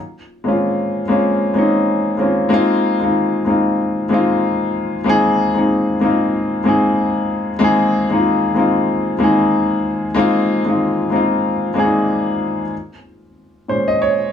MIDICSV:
0, 0, Header, 1, 2, 480
1, 0, Start_track
1, 0, Key_signature, -5, "minor"
1, 0, Tempo, 638298
1, 1884, Time_signature, 4, 2, 24, 8
1, 10771, End_track
2, 0, Start_track
2, 0, Title_t, "Grand piano"
2, 0, Program_c, 0, 0
2, 121, Control_c, 0, 64, 127
2, 330, Note_on_c, 0, 56, 66
2, 337, Note_on_c, 0, 58, 58
2, 350, Note_on_c, 0, 60, 55
2, 359, Note_on_c, 0, 61, 60
2, 364, Note_on_c, 0, 65, 73
2, 751, Note_off_c, 0, 56, 0
2, 754, Note_off_c, 0, 58, 0
2, 761, Note_off_c, 0, 60, 0
2, 765, Note_off_c, 0, 61, 0
2, 768, Note_off_c, 0, 65, 0
2, 811, Note_on_c, 0, 56, 82
2, 820, Note_on_c, 0, 58, 75
2, 830, Note_on_c, 0, 60, 66
2, 836, Note_on_c, 0, 61, 74
2, 847, Note_on_c, 0, 65, 80
2, 1123, Note_off_c, 0, 56, 0
2, 1127, Note_off_c, 0, 58, 0
2, 1132, Note_off_c, 0, 60, 0
2, 1135, Note_off_c, 0, 61, 0
2, 1140, Note_off_c, 0, 65, 0
2, 1155, Note_on_c, 0, 56, 73
2, 1163, Note_on_c, 0, 58, 65
2, 1173, Note_on_c, 0, 60, 65
2, 1181, Note_on_c, 0, 61, 69
2, 1191, Note_on_c, 0, 63, 78
2, 1591, Note_off_c, 0, 56, 0
2, 1596, Note_off_c, 0, 58, 0
2, 1601, Note_off_c, 0, 60, 0
2, 1605, Note_off_c, 0, 61, 0
2, 1610, Note_off_c, 0, 63, 0
2, 1634, Note_on_c, 0, 56, 67
2, 1644, Note_on_c, 0, 58, 65
2, 1653, Note_on_c, 0, 60, 68
2, 1663, Note_on_c, 0, 61, 65
2, 1672, Note_on_c, 0, 65, 71
2, 1855, Note_off_c, 0, 56, 0
2, 1860, Note_off_c, 0, 58, 0
2, 1865, Note_off_c, 0, 60, 0
2, 1870, Note_off_c, 0, 61, 0
2, 1872, Note_on_c, 0, 56, 95
2, 1874, Note_off_c, 0, 65, 0
2, 1880, Note_on_c, 0, 58, 94
2, 1888, Note_on_c, 0, 60, 88
2, 1895, Control_c, 0, 64, 0
2, 1899, Note_on_c, 0, 63, 77
2, 1908, Note_on_c, 0, 65, 109
2, 2033, Control_c, 0, 64, 127
2, 2207, Note_off_c, 0, 56, 0
2, 2211, Note_off_c, 0, 58, 0
2, 2215, Note_off_c, 0, 60, 0
2, 2221, Note_off_c, 0, 63, 0
2, 2225, Note_off_c, 0, 65, 0
2, 2254, Note_on_c, 0, 56, 62
2, 2264, Note_on_c, 0, 58, 60
2, 2273, Note_on_c, 0, 60, 56
2, 2283, Note_on_c, 0, 63, 58
2, 2292, Note_on_c, 0, 65, 67
2, 2564, Note_off_c, 0, 56, 0
2, 2569, Note_off_c, 0, 58, 0
2, 2573, Note_off_c, 0, 60, 0
2, 2578, Note_off_c, 0, 63, 0
2, 2583, Note_off_c, 0, 65, 0
2, 2593, Note_on_c, 0, 56, 67
2, 2606, Note_on_c, 0, 58, 60
2, 2612, Note_on_c, 0, 60, 65
2, 2623, Note_on_c, 0, 63, 66
2, 2632, Note_on_c, 0, 65, 73
2, 3031, Note_off_c, 0, 56, 0
2, 3037, Note_off_c, 0, 58, 0
2, 3040, Note_off_c, 0, 60, 0
2, 3045, Note_off_c, 0, 63, 0
2, 3050, Note_off_c, 0, 65, 0
2, 3076, Note_on_c, 0, 56, 85
2, 3085, Note_on_c, 0, 58, 69
2, 3095, Note_on_c, 0, 60, 75
2, 3104, Note_on_c, 0, 63, 74
2, 3113, Note_on_c, 0, 65, 91
2, 3728, Note_off_c, 0, 56, 0
2, 3732, Note_off_c, 0, 58, 0
2, 3737, Note_off_c, 0, 60, 0
2, 3742, Note_off_c, 0, 63, 0
2, 3746, Note_off_c, 0, 65, 0
2, 3792, Note_on_c, 0, 56, 92
2, 3803, Note_on_c, 0, 58, 82
2, 3812, Note_on_c, 0, 60, 91
2, 3822, Note_on_c, 0, 63, 86
2, 3831, Note_on_c, 0, 68, 110
2, 4127, Note_off_c, 0, 56, 0
2, 4133, Note_off_c, 0, 58, 0
2, 4137, Note_off_c, 0, 60, 0
2, 4142, Note_off_c, 0, 63, 0
2, 4147, Note_off_c, 0, 68, 0
2, 4168, Note_on_c, 0, 56, 67
2, 4176, Note_on_c, 0, 58, 60
2, 4187, Note_on_c, 0, 60, 64
2, 4195, Note_on_c, 0, 63, 62
2, 4206, Note_on_c, 0, 68, 71
2, 4481, Note_off_c, 0, 56, 0
2, 4485, Note_off_c, 0, 58, 0
2, 4491, Note_off_c, 0, 60, 0
2, 4495, Note_off_c, 0, 63, 0
2, 4500, Note_off_c, 0, 68, 0
2, 4511, Note_on_c, 0, 56, 67
2, 4522, Note_on_c, 0, 58, 76
2, 4529, Note_on_c, 0, 60, 70
2, 4538, Note_on_c, 0, 63, 71
2, 4548, Note_on_c, 0, 65, 81
2, 4949, Note_off_c, 0, 56, 0
2, 4955, Note_off_c, 0, 58, 0
2, 4958, Note_off_c, 0, 60, 0
2, 4963, Note_off_c, 0, 63, 0
2, 4968, Note_off_c, 0, 65, 0
2, 4991, Note_on_c, 0, 56, 80
2, 5003, Note_on_c, 0, 58, 81
2, 5013, Note_on_c, 0, 60, 81
2, 5020, Note_on_c, 0, 63, 78
2, 5028, Note_on_c, 0, 68, 88
2, 5646, Note_off_c, 0, 56, 0
2, 5651, Note_off_c, 0, 58, 0
2, 5656, Note_off_c, 0, 60, 0
2, 5660, Note_off_c, 0, 63, 0
2, 5664, Note_off_c, 0, 68, 0
2, 5707, Note_on_c, 0, 56, 106
2, 5716, Note_on_c, 0, 58, 91
2, 5726, Note_on_c, 0, 60, 89
2, 5735, Note_on_c, 0, 63, 82
2, 5746, Note_on_c, 0, 68, 105
2, 6045, Note_off_c, 0, 56, 0
2, 6049, Note_off_c, 0, 58, 0
2, 6054, Note_off_c, 0, 60, 0
2, 6059, Note_off_c, 0, 63, 0
2, 6064, Note_off_c, 0, 68, 0
2, 6084, Note_on_c, 0, 56, 72
2, 6095, Note_on_c, 0, 58, 69
2, 6103, Note_on_c, 0, 60, 65
2, 6113, Note_on_c, 0, 63, 68
2, 6121, Note_on_c, 0, 65, 82
2, 6399, Note_off_c, 0, 56, 0
2, 6405, Note_off_c, 0, 58, 0
2, 6409, Note_off_c, 0, 60, 0
2, 6413, Note_off_c, 0, 63, 0
2, 6417, Note_off_c, 0, 65, 0
2, 6426, Note_on_c, 0, 56, 68
2, 6437, Note_on_c, 0, 58, 70
2, 6444, Note_on_c, 0, 60, 69
2, 6454, Note_on_c, 0, 63, 70
2, 6464, Note_on_c, 0, 65, 81
2, 6867, Note_off_c, 0, 56, 0
2, 6872, Note_off_c, 0, 58, 0
2, 6876, Note_off_c, 0, 60, 0
2, 6881, Note_off_c, 0, 63, 0
2, 6886, Note_off_c, 0, 65, 0
2, 6907, Note_on_c, 0, 56, 88
2, 6917, Note_on_c, 0, 58, 83
2, 6926, Note_on_c, 0, 60, 78
2, 6936, Note_on_c, 0, 63, 82
2, 6946, Note_on_c, 0, 68, 88
2, 7563, Note_off_c, 0, 56, 0
2, 7568, Note_off_c, 0, 58, 0
2, 7573, Note_off_c, 0, 60, 0
2, 7578, Note_off_c, 0, 63, 0
2, 7583, Note_off_c, 0, 68, 0
2, 7629, Note_on_c, 0, 56, 107
2, 7639, Note_on_c, 0, 58, 94
2, 7648, Note_on_c, 0, 60, 92
2, 7657, Note_on_c, 0, 63, 91
2, 7664, Note_on_c, 0, 65, 108
2, 7966, Note_off_c, 0, 56, 0
2, 7971, Note_off_c, 0, 58, 0
2, 7975, Note_off_c, 0, 60, 0
2, 7980, Note_off_c, 0, 63, 0
2, 7983, Note_off_c, 0, 65, 0
2, 8006, Note_on_c, 0, 56, 69
2, 8014, Note_on_c, 0, 58, 62
2, 8025, Note_on_c, 0, 60, 59
2, 8034, Note_on_c, 0, 63, 65
2, 8043, Note_on_c, 0, 65, 77
2, 8320, Note_off_c, 0, 56, 0
2, 8324, Note_off_c, 0, 58, 0
2, 8329, Note_off_c, 0, 60, 0
2, 8334, Note_off_c, 0, 63, 0
2, 8339, Note_off_c, 0, 65, 0
2, 8350, Note_on_c, 0, 56, 73
2, 8360, Note_on_c, 0, 58, 69
2, 8368, Note_on_c, 0, 60, 73
2, 8378, Note_on_c, 0, 63, 68
2, 8390, Note_on_c, 0, 65, 85
2, 8789, Note_off_c, 0, 56, 0
2, 8794, Note_off_c, 0, 58, 0
2, 8798, Note_off_c, 0, 60, 0
2, 8803, Note_off_c, 0, 63, 0
2, 8809, Note_off_c, 0, 65, 0
2, 8828, Note_on_c, 0, 56, 84
2, 8838, Note_on_c, 0, 58, 75
2, 8846, Note_on_c, 0, 60, 77
2, 8858, Note_on_c, 0, 62, 62
2, 8867, Note_on_c, 0, 68, 89
2, 8904, Note_on_c, 0, 63, 70
2, 8907, Note_off_c, 0, 62, 0
2, 9484, Note_off_c, 0, 56, 0
2, 9489, Note_off_c, 0, 58, 0
2, 9493, Note_off_c, 0, 60, 0
2, 9503, Note_off_c, 0, 68, 0
2, 9522, Note_off_c, 0, 63, 0
2, 9575, Control_c, 0, 64, 0
2, 9706, Control_c, 0, 64, 127
2, 10291, Note_on_c, 0, 46, 44
2, 10296, Note_on_c, 0, 56, 44
2, 10297, Note_on_c, 0, 61, 56
2, 10298, Note_on_c, 0, 72, 79
2, 10433, Note_off_c, 0, 72, 0
2, 10436, Note_on_c, 0, 75, 88
2, 10534, Note_off_c, 0, 75, 0
2, 10541, Note_on_c, 0, 73, 84
2, 10756, Note_off_c, 0, 73, 0
2, 10771, Note_off_c, 0, 46, 0
2, 10771, Note_off_c, 0, 56, 0
2, 10771, Note_off_c, 0, 61, 0
2, 10771, End_track
0, 0, End_of_file